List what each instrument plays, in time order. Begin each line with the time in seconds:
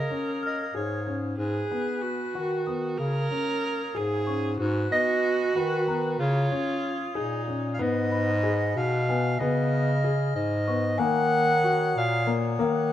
Already playing: viola A#4, flute section C#5 F5 D#6, soprano saxophone D#5
0.10 grand piano C#4
0.43 soprano saxophone D#5, celesta F6
0.73 bass clarinet G#2, grand piano G#4, soprano saxophone C#5
1.07 grand piano C#4
1.37 bass clarinet G#2, viola G#4, flute section B4 G#5 F#6
1.71 grand piano B3
2.01 viola F#4
2.34 bass clarinet D#3, grand piano F#4
2.67 grand piano B3, celesta D#6
2.98 bass clarinet C#3, viola A#4, flute section C#5 F5 D#6
3.31 grand piano C#4
3.95 bass clarinet G#2, grand piano G#4, viola G#4
4.27 grand piano C#4, celesta C#6
4.58 bass clarinet G#2, viola F#4, flute section B4 G#5 F#6
4.91 grand piano B3, soprano saxophone D#5
5.55 bass clarinet D#3, grand piano F#4, soprano saxophone B4
5.88 grand piano B3, celesta A#5
6.19 bass clarinet C#3, viola F4, flute section C#5 F5 D#6, soprano saxophone C#5
6.51 grand piano C#4
7.15 bass clarinet A#2, viola D#4, grand piano G#4
7.48 grand piano C#4
7.74 soprano saxophone F5
7.79 bass clarinet G#2, grand piano B3, flute section B4 F#5 B5, soprano saxophone D#5
8.12 celesta B5
8.43 grand piano G#4
8.76 bass clarinet B2, soprano saxophone F5
9.09 grand piano B3, celesta G#5
9.39 bass clarinet C#3, grand piano B3, flute section D#5 B5 F6, soprano saxophone D#5
10.04 grand piano G#4
10.35 bass clarinet G#2, soprano saxophone D#5
10.68 grand piano B3, celesta C#6
10.98 bass clarinet D#3, grand piano A#3, flute section C#5 F#5 A#5 D#6, soprano saxophone F#5, celesta G#5
11.64 grand piano F#4
11.96 bass clarinet A#2, soprano saxophone F5
12.27 grand piano A#3
12.59 bass clarinet D#3, grand piano A#3, soprano saxophone F#5